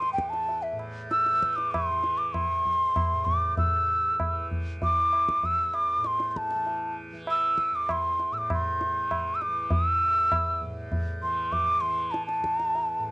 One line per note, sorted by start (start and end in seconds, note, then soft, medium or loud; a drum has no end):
0.00 0.12 E2 medium
0.00 0.72 A2 medium
0.00 1.31 E3 medium
0.00 0.12 C6 loud
0.00 tabla te medium
0.12 2.51 E2 medium
0.12 0.31 G5 medium
0.18 tabla ke medium
0.29 0.64 A5 medium
0.29 tabla te medium
0.49 tabla tin medium
0.62 0.79 E5 medium
0.72 3.11 A2 medium
0.79 tabla na medium
1.11 1.53 E6 loud
1.11 tabla te medium
1.26 tabla te medium
1.31 1.91 E3 medium
1.43 tabla ke medium
1.53 1.73 D6 medium
1.53 1.57 E6 medium
1.58 tabla te medium
1.72 2.19 C6 medium
1.72 tabla na medium
1.72 tabla ge medium
1.91 4.19 E3 medium
2.04 tabla te medium
2.18 2.35 D6 medium
2.33 3.26 C6 medium
2.33 tabla na medium
2.33 tabla ge medium
2.51 5.35 E2 medium
2.66 tabla ge medium
2.96 tabla na medium
2.96 tabla ge medium
3.12 3.61 A2 medium
3.25 3.57 D6 medium
3.25 tabla ge medium
3.57 5.97 A2 soft
3.57 4.47 E6 medium
3.57 tabla tin medium
3.57 tabla ge medium
4.19 4.78 E3 medium
4.19 tabla na medium
4.19 tabla ge medium
4.51 tabla ge medium
4.78 6.54 E3 medium
4.82 5.47 D6 loud
4.82 tabla tin medium
4.82 tabla ge medium
5.13 tabla na medium
5.29 tabla ke medium
5.36 7.71 E2 medium
5.43 5.76 E6 medium
5.43 tabla tin medium
5.43 tabla ge medium
5.74 6.08 D6 medium
5.74 tabla na medium
5.97 8.30 A2 medium
6.04 6.31 C6 medium
6.04 tabla te medium
6.20 tabla te medium
6.31 6.39 C6 medium
6.36 6.98 A5 medium
6.36 tabla ke medium
6.51 7.13 E3 medium
6.51 tabla te medium
6.67 tabla tin medium
7.13 8.90 E3 medium
7.27 7.77 E6 loud
7.27 tabla na medium
7.58 tabla ke medium
7.71 10.03 E2 medium
7.71 7.92 D6 medium
7.89 8.35 C6 medium
7.89 tabla na medium
7.89 tabla ge medium
8.19 tabla te medium
8.31 10.63 A2 medium
8.31 8.39 E6 medium
8.38 8.51 D6 medium
8.50 9.37 C6 medium
8.50 tabla na medium
8.50 tabla ge medium
8.81 tabla te medium
8.90 9.48 E3 medium
9.11 tabla na medium
9.11 tabla ge medium
9.35 9.43 E6 medium
9.42 9.74 D6 medium
9.42 tabla te medium
9.48 11.22 E3 medium
9.71 10.63 E6 medium
9.71 tabla tin medium
9.71 tabla ge medium
10.03 12.39 E2 medium
10.32 tabla na medium
10.32 tabla ge medium
10.62 12.98 A2 medium
10.62 tabla ge soft
10.92 tabla tin medium
10.92 tabla ge medium
11.22 11.82 E3 medium
11.22 11.54 C6 medium
11.52 11.82 D6 medium
11.52 tabla tin medium
11.52 tabla ge medium
11.81 13.11 E3 medium
11.81 12.13 C6 medium
12.11 12.26 A5 medium
12.11 tabla te medium
12.27 13.11 A5 medium
12.27 tabla te medium
12.39 13.11 E2 medium
12.44 tabla ke medium
12.60 tabla te medium
12.75 tabla tin medium
12.98 13.11 A2 medium